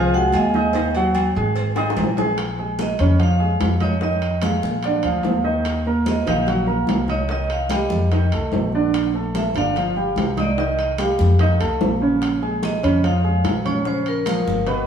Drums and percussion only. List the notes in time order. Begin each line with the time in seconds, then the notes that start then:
0.12 high conga, low agogo
0.32 cowbell, high conga, low agogo
0.54 high conga
0.73 cowbell, high conga, low agogo
0.95 high conga, low agogo
1.15 cowbell, high conga, low agogo
1.35 high conga
1.56 cowbell, high conga, low agogo
1.76 high bongo, high conga, low agogo
1.90 high bongo
1.97 cowbell, high conga, low timbale, low agogo
2.04 low bongo
2.17 cowbell, low bongo, high conga, high timbale
2.38 high bongo, high conga, high timbale
2.58 high bongo, high conga
2.79 high bongo, high conga, high timbale, low timbale
2.99 high conga, low conga, high timbale
3.20 high bongo, high conga, high timbale
3.40 high bongo, high conga
3.60 high bongo, low bongo, high conga, high timbale, low timbale
3.80 high conga, high timbale
4.01 high bongo, high conga
4.22 high bongo, high conga, high timbale
4.42 high bongo, high conga, high timbale, low timbale
4.63 high conga
4.83 high bongo, high conga, high timbale
5.03 high bongo, high conga, high timbale
5.23 high bongo, low bongo, high conga, low timbale
5.45 high conga
5.65 high bongo, high conga, high timbale
5.86 high bongo, high conga
6.06 high bongo, high conga, high timbale, low timbale
6.27 high conga, low conga, high timbale
6.47 high bongo, high conga, low conga, high timbale
6.67 high bongo, high conga
6.87 high bongo, low bongo, high conga, high timbale, low timbale
7.08 high conga, high timbale
7.28 high bongo, high conga
7.49 high bongo, high conga, high timbale
7.69 high bongo, high conga, high timbale, low timbale
7.90 high conga
8.12 high bongo, high conga, high timbale
8.32 high bongo, high conga, high timbale
8.52 high bongo, low bongo, high conga, low timbale
8.72 high conga
8.93 high bongo, high conga, high timbale
9.14 high bongo, high conga
9.35 high bongo, high conga, high timbale, low timbale
9.55 high conga, low conga, high timbale
9.76 high bongo, high conga, high timbale
9.96 high bongo, high conga
10.16 high bongo, low bongo, high conga, high timbale, low timbale
10.37 high conga, high timbale
10.57 high bongo, high conga
10.78 high bongo, high conga, high timbale
10.98 high bongo, high conga, high timbale, low timbale
11.19 high conga
11.39 high bongo, high conga, high timbale
11.60 high bongo, high conga, high timbale
11.81 high bongo, low bongo, high conga, low timbale
12.01 high conga
12.22 high bongo, high conga, high timbale
12.43 high bongo, high conga
12.63 high bongo, high conga, high timbale, low timbale
12.83 high conga, low conga, high timbale
13.04 high bongo, high conga, high timbale
13.24 high bongo, high conga
13.44 high bongo, low bongo, high conga, high timbale, low timbale
13.66 high conga, high timbale
13.85 high bongo, high conga
14.06 high bongo, high conga, high timbale
14.26 high bongo, high conga, high timbale, low timbale
14.48 high conga
14.67 high bongo, high conga, high timbale